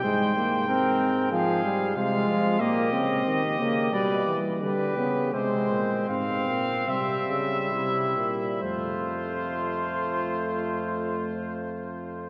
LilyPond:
<<
  \new Staff \with { instrumentName = "Trumpet" } { \time 4/4 \key f \minor \tempo 4 = 83 g''2 f''4 f''4 | ees''2 d''8 r8 b'4 | c''4 f''4 e''2 | c''1 | }
  \new Staff \with { instrumentName = "Flugelhorn" } { \time 4/4 \key f \minor c''4 bes'4 aes'4 f'4 | g'4 g'4 b'8 r8 g'4 | c'2. e'4 | f'1 | }
  \new Staff \with { instrumentName = "Trombone" } { \clef bass \time 4/4 \key f \minor aes8 bes8 c'4 f8 g8 aes4 | bes8 c'4 bes8 g8 r8 g8 b8 | aes4 c'4 g2 | a1 | }
  \new Staff \with { instrumentName = "Bass trombone" } { \clef bass \time 4/4 \key f \minor aes,2. c8 f8 | bes,8 des8 ees8 des8 b,8 e8 d8 des8 | c8 bes,8 aes,8 bes,8 c8 des8 c8 bes,8 | f,1 | }
>>